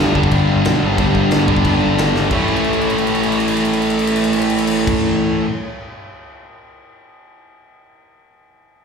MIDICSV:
0, 0, Header, 1, 6, 480
1, 0, Start_track
1, 0, Tempo, 331492
1, 1422, Time_signature, 4, 2, 24, 8
1, 12812, End_track
2, 0, Start_track
2, 0, Title_t, "Distorted electric guitar"
2, 0, Program_c, 0, 30
2, 0, Note_on_c, 0, 43, 95
2, 0, Note_on_c, 0, 50, 107
2, 0, Note_on_c, 0, 55, 114
2, 0, Note_on_c, 0, 59, 113
2, 0, Note_on_c, 0, 62, 120
2, 436, Note_off_c, 0, 50, 0
2, 443, Note_off_c, 0, 43, 0
2, 448, Note_on_c, 0, 43, 87
2, 452, Note_off_c, 0, 55, 0
2, 453, Note_on_c, 0, 50, 81
2, 458, Note_on_c, 0, 55, 90
2, 465, Note_off_c, 0, 59, 0
2, 467, Note_off_c, 0, 62, 0
2, 471, Note_on_c, 0, 59, 95
2, 473, Note_on_c, 0, 62, 87
2, 1401, Note_off_c, 0, 43, 0
2, 1403, Note_off_c, 0, 50, 0
2, 1405, Note_off_c, 0, 55, 0
2, 1412, Note_off_c, 0, 59, 0
2, 1413, Note_off_c, 0, 62, 0
2, 1420, Note_on_c, 0, 43, 106
2, 1423, Note_on_c, 0, 50, 107
2, 1434, Note_on_c, 0, 55, 113
2, 1439, Note_on_c, 0, 59, 121
2, 1448, Note_on_c, 0, 62, 117
2, 2357, Note_off_c, 0, 43, 0
2, 2362, Note_off_c, 0, 50, 0
2, 2373, Note_off_c, 0, 55, 0
2, 2375, Note_on_c, 0, 43, 74
2, 2376, Note_off_c, 0, 59, 0
2, 2380, Note_off_c, 0, 62, 0
2, 2380, Note_on_c, 0, 50, 81
2, 2392, Note_on_c, 0, 55, 91
2, 2397, Note_on_c, 0, 59, 85
2, 2402, Note_on_c, 0, 62, 91
2, 3314, Note_off_c, 0, 43, 0
2, 3320, Note_on_c, 0, 45, 109
2, 3326, Note_off_c, 0, 50, 0
2, 3332, Note_off_c, 0, 55, 0
2, 3334, Note_off_c, 0, 59, 0
2, 3337, Note_off_c, 0, 62, 0
2, 3338, Note_on_c, 0, 52, 103
2, 3355, Note_on_c, 0, 57, 110
2, 3364, Note_on_c, 0, 61, 116
2, 3375, Note_on_c, 0, 64, 108
2, 7898, Note_off_c, 0, 45, 0
2, 7898, Note_off_c, 0, 52, 0
2, 7898, Note_off_c, 0, 57, 0
2, 7898, Note_off_c, 0, 61, 0
2, 7898, Note_off_c, 0, 64, 0
2, 12812, End_track
3, 0, Start_track
3, 0, Title_t, "Distorted electric guitar"
3, 0, Program_c, 1, 30
3, 211, Note_on_c, 1, 55, 102
3, 234, Note_on_c, 1, 50, 91
3, 257, Note_on_c, 1, 43, 84
3, 1395, Note_off_c, 1, 43, 0
3, 1402, Note_off_c, 1, 55, 0
3, 1414, Note_off_c, 1, 50, 0
3, 2136, Note_on_c, 1, 55, 95
3, 2156, Note_on_c, 1, 50, 74
3, 2176, Note_on_c, 1, 43, 73
3, 3323, Note_off_c, 1, 50, 0
3, 3324, Note_off_c, 1, 55, 0
3, 3344, Note_off_c, 1, 43, 0
3, 12812, End_track
4, 0, Start_track
4, 0, Title_t, "Distorted electric guitar"
4, 0, Program_c, 2, 30
4, 1178, Note_on_c, 2, 55, 79
4, 1204, Note_on_c, 2, 50, 73
4, 1221, Note_on_c, 2, 43, 71
4, 1398, Note_off_c, 2, 43, 0
4, 1406, Note_off_c, 2, 55, 0
4, 1419, Note_off_c, 2, 50, 0
4, 3092, Note_on_c, 2, 55, 81
4, 3122, Note_on_c, 2, 50, 76
4, 3138, Note_on_c, 2, 43, 71
4, 3322, Note_off_c, 2, 55, 0
4, 3326, Note_off_c, 2, 50, 0
4, 3345, Note_off_c, 2, 43, 0
4, 12812, End_track
5, 0, Start_track
5, 0, Title_t, "Picked electric bass"
5, 0, Program_c, 3, 34
5, 0, Note_on_c, 3, 31, 91
5, 188, Note_off_c, 3, 31, 0
5, 221, Note_on_c, 3, 31, 94
5, 428, Note_off_c, 3, 31, 0
5, 458, Note_on_c, 3, 31, 102
5, 666, Note_off_c, 3, 31, 0
5, 714, Note_on_c, 3, 31, 94
5, 915, Note_off_c, 3, 31, 0
5, 952, Note_on_c, 3, 35, 99
5, 1154, Note_off_c, 3, 35, 0
5, 1183, Note_on_c, 3, 31, 94
5, 1389, Note_off_c, 3, 31, 0
5, 1425, Note_on_c, 3, 31, 105
5, 1630, Note_off_c, 3, 31, 0
5, 1669, Note_on_c, 3, 31, 94
5, 1872, Note_off_c, 3, 31, 0
5, 1909, Note_on_c, 3, 31, 99
5, 2112, Note_off_c, 3, 31, 0
5, 2145, Note_on_c, 3, 31, 94
5, 2350, Note_off_c, 3, 31, 0
5, 2384, Note_on_c, 3, 31, 105
5, 2589, Note_off_c, 3, 31, 0
5, 2624, Note_on_c, 3, 31, 89
5, 2829, Note_off_c, 3, 31, 0
5, 2857, Note_on_c, 3, 31, 98
5, 3065, Note_off_c, 3, 31, 0
5, 3114, Note_on_c, 3, 31, 100
5, 3315, Note_off_c, 3, 31, 0
5, 3343, Note_on_c, 3, 33, 101
5, 7100, Note_off_c, 3, 33, 0
5, 12812, End_track
6, 0, Start_track
6, 0, Title_t, "Drums"
6, 221, Note_on_c, 9, 36, 83
6, 339, Note_off_c, 9, 36, 0
6, 339, Note_on_c, 9, 36, 94
6, 452, Note_on_c, 9, 49, 65
6, 461, Note_off_c, 9, 36, 0
6, 461, Note_on_c, 9, 36, 105
6, 596, Note_off_c, 9, 49, 0
6, 606, Note_off_c, 9, 36, 0
6, 937, Note_on_c, 9, 49, 74
6, 952, Note_on_c, 9, 38, 127
6, 1082, Note_off_c, 9, 49, 0
6, 1097, Note_off_c, 9, 38, 0
6, 1421, Note_on_c, 9, 49, 67
6, 1424, Note_on_c, 9, 36, 121
6, 1566, Note_off_c, 9, 49, 0
6, 1568, Note_off_c, 9, 36, 0
6, 1664, Note_on_c, 9, 36, 86
6, 1809, Note_off_c, 9, 36, 0
6, 1896, Note_on_c, 9, 49, 67
6, 1910, Note_on_c, 9, 38, 110
6, 2041, Note_off_c, 9, 49, 0
6, 2055, Note_off_c, 9, 38, 0
6, 2144, Note_on_c, 9, 36, 91
6, 2265, Note_off_c, 9, 36, 0
6, 2265, Note_on_c, 9, 36, 89
6, 2385, Note_off_c, 9, 36, 0
6, 2385, Note_on_c, 9, 36, 115
6, 2388, Note_on_c, 9, 49, 79
6, 2530, Note_off_c, 9, 36, 0
6, 2532, Note_off_c, 9, 49, 0
6, 2871, Note_on_c, 9, 49, 76
6, 2885, Note_on_c, 9, 38, 127
6, 3016, Note_off_c, 9, 49, 0
6, 3030, Note_off_c, 9, 38, 0
6, 3125, Note_on_c, 9, 38, 80
6, 3270, Note_off_c, 9, 38, 0
6, 3342, Note_on_c, 9, 57, 92
6, 3344, Note_on_c, 9, 36, 119
6, 3486, Note_off_c, 9, 57, 0
6, 3489, Note_off_c, 9, 36, 0
6, 3590, Note_on_c, 9, 49, 49
6, 3711, Note_on_c, 9, 51, 47
6, 3735, Note_off_c, 9, 49, 0
6, 3827, Note_on_c, 9, 49, 50
6, 3855, Note_off_c, 9, 51, 0
6, 3952, Note_on_c, 9, 51, 51
6, 3972, Note_off_c, 9, 49, 0
6, 4074, Note_on_c, 9, 49, 49
6, 4097, Note_off_c, 9, 51, 0
6, 4194, Note_on_c, 9, 51, 56
6, 4219, Note_off_c, 9, 49, 0
6, 4318, Note_on_c, 9, 49, 65
6, 4339, Note_off_c, 9, 51, 0
6, 4442, Note_on_c, 9, 51, 60
6, 4463, Note_off_c, 9, 49, 0
6, 4556, Note_on_c, 9, 49, 72
6, 4587, Note_off_c, 9, 51, 0
6, 4680, Note_on_c, 9, 51, 61
6, 4701, Note_off_c, 9, 49, 0
6, 4805, Note_on_c, 9, 49, 76
6, 4825, Note_off_c, 9, 51, 0
6, 4922, Note_on_c, 9, 51, 69
6, 4950, Note_off_c, 9, 49, 0
6, 5035, Note_on_c, 9, 49, 80
6, 5067, Note_off_c, 9, 51, 0
6, 5163, Note_on_c, 9, 51, 78
6, 5180, Note_off_c, 9, 49, 0
6, 5284, Note_on_c, 9, 49, 77
6, 5308, Note_off_c, 9, 51, 0
6, 5404, Note_on_c, 9, 51, 81
6, 5429, Note_off_c, 9, 49, 0
6, 5528, Note_on_c, 9, 49, 73
6, 5549, Note_off_c, 9, 51, 0
6, 5646, Note_on_c, 9, 51, 71
6, 5672, Note_off_c, 9, 49, 0
6, 5777, Note_on_c, 9, 49, 78
6, 5791, Note_off_c, 9, 51, 0
6, 5895, Note_on_c, 9, 51, 88
6, 5921, Note_off_c, 9, 49, 0
6, 6019, Note_on_c, 9, 49, 88
6, 6040, Note_off_c, 9, 51, 0
6, 6135, Note_on_c, 9, 51, 88
6, 6164, Note_off_c, 9, 49, 0
6, 6267, Note_on_c, 9, 49, 90
6, 6280, Note_off_c, 9, 51, 0
6, 6391, Note_on_c, 9, 51, 86
6, 6412, Note_off_c, 9, 49, 0
6, 6510, Note_on_c, 9, 49, 91
6, 6536, Note_off_c, 9, 51, 0
6, 6639, Note_on_c, 9, 51, 90
6, 6655, Note_off_c, 9, 49, 0
6, 6764, Note_on_c, 9, 49, 106
6, 6783, Note_off_c, 9, 51, 0
6, 6909, Note_off_c, 9, 49, 0
6, 7057, Note_on_c, 9, 36, 127
6, 7058, Note_on_c, 9, 57, 111
6, 7202, Note_off_c, 9, 36, 0
6, 7203, Note_off_c, 9, 57, 0
6, 12812, End_track
0, 0, End_of_file